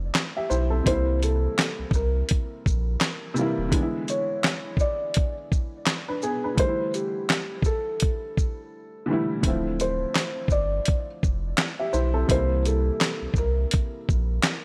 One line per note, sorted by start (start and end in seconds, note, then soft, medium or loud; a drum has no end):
0.00 0.11 F1 medium
0.00 0.88 F3 medium
0.00 0.88 A3 medium
0.00 0.71 C4 medium
0.00 0.50 E4 medium
0.15 snare loud
0.15 clap medium
0.15 closed hi-hat medium
0.37 0.50 G4 medium
0.37 0.50 E5 medium
0.50 0.81 B1 loud
0.50 0.70 E4 medium
0.50 0.70 C5 medium
0.50 shaker medium
0.70 1.05 C4 medium
0.70 1.05 A4 medium
0.83 1.48 C2 loud
0.83 1.88 C3 medium
0.83 1.89 E3 medium
0.83 1.89 G3 medium
0.83 1.19 C5 loud
0.83 kick loud
0.83 closed hi-hat medium
0.89 1.90 A#3 medium
0.89 1.91 E4 medium
1.23 1.94 A4 medium
1.23 closed hi-hat soft
1.23 shaker soft
1.59 snare loud
1.59 clap medium
1.59 closed hi-hat medium
1.79 1.85 C2 soft
1.91 2.23 C2 loud
1.91 kick medium
1.91 shaker medium
1.95 3.69 A#4 medium
2.29 kick medium
2.29 closed hi-hat medium
2.66 2.96 A#1 medium
2.66 kick medium
2.66 shaker soft
3.01 snare loud
3.01 clap medium
3.01 closed hi-hat medium
3.34 3.62 C3 loud
3.34 3.63 E3 medium
3.34 3.64 G3 medium
3.34 shaker medium
3.39 3.65 A#3 medium
3.39 3.66 E4 loud
3.58 3.70 D#1 medium
3.69 4.73 D3 medium
3.69 4.74 E3 medium
3.69 4.75 G#3 medium
3.69 kick loud
3.69 closed hi-hat medium
3.74 4.76 B3 medium
3.74 3.82 D4 medium
3.82 4.80 E4 medium
4.08 4.80 C#5 medium
4.08 closed hi-hat soft
4.08 shaker soft
4.44 snare loud
4.44 clap medium
4.44 closed hi-hat medium
4.77 5.33 D5 medium
4.77 kick medium
4.77 shaker medium
5.14 kick loud
5.14 closed hi-hat medium
5.52 kick medium
5.52 shaker soft
5.87 snare loud
5.87 clap medium
5.87 closed hi-hat medium
6.08 6.22 D4 medium
6.08 6.22 B4 medium
6.22 6.43 B3 medium
6.22 6.43 G#4 medium
6.22 shaker medium
6.44 6.78 D4 medium
6.44 6.78 B4 medium
6.55 7.59 D3 medium
6.55 7.60 E3 medium
6.55 7.61 G3 medium
6.55 kick loud
6.55 closed hi-hat medium
6.59 7.62 A3 medium
6.59 6.67 D#4 medium
6.59 6.91 C5 loud
6.68 7.66 E4 medium
6.94 7.61 G4 medium
6.94 closed hi-hat soft
6.94 shaker soft
7.30 snare loud
7.30 clap medium
7.30 closed hi-hat medium
7.62 9.40 A4 medium
7.62 kick loud
7.62 shaker medium
8.00 kick medium
8.00 closed hi-hat medium
8.37 kick medium
8.37 shaker soft
9.06 9.34 D3 medium
9.06 9.35 E3 medium
9.06 9.36 G3 medium
9.11 9.37 A3 medium
9.11 9.38 E4 loud
9.41 10.05 D1 loud
9.41 10.45 D3 medium
9.41 9.51 E3 medium
9.41 10.47 A3 medium
9.41 kick loud
9.41 closed hi-hat medium
9.46 10.49 F3 medium
9.46 10.47 C4 medium
9.46 10.48 E4 medium
9.80 10.47 C5 medium
9.80 closed hi-hat soft
9.80 shaker soft
10.15 snare loud
10.15 clap medium
10.15 closed hi-hat medium
10.48 10.80 G1 loud
10.48 11.05 D5 medium
10.48 kick medium
10.48 shaker medium
10.85 kick medium
10.85 closed hi-hat medium
11.23 11.54 F1 medium
11.23 kick medium
11.23 shaker soft
11.58 snare loud
11.58 clap medium
11.58 closed hi-hat medium
11.80 11.93 G4 medium
11.80 11.93 E5 medium
11.93 12.24 B1 medium
11.93 12.14 E4 medium
11.93 12.13 C5 medium
11.93 shaker medium
12.14 12.48 C4 medium
12.14 12.48 A4 medium
12.27 12.91 C2 loud
12.27 13.31 C3 medium
12.27 13.32 E3 medium
12.27 13.32 G3 medium
12.27 kick loud
12.27 closed hi-hat medium
12.31 13.33 A#3 medium
12.31 13.34 E4 medium
12.31 12.62 C5 medium
12.65 13.33 A4 medium
12.65 closed hi-hat soft
12.65 shaker soft
13.01 snare loud
13.01 clap medium
13.01 closed hi-hat medium
13.22 13.28 C2 soft
13.34 13.66 C2 loud
13.34 kick medium
13.34 shaker medium
13.38 14.65 A#4 medium
13.71 kick loud
13.71 closed hi-hat medium
14.09 14.39 A#1 medium
14.09 kick medium
14.09 shaker soft
14.43 snare loud
14.43 clap medium
14.43 closed hi-hat medium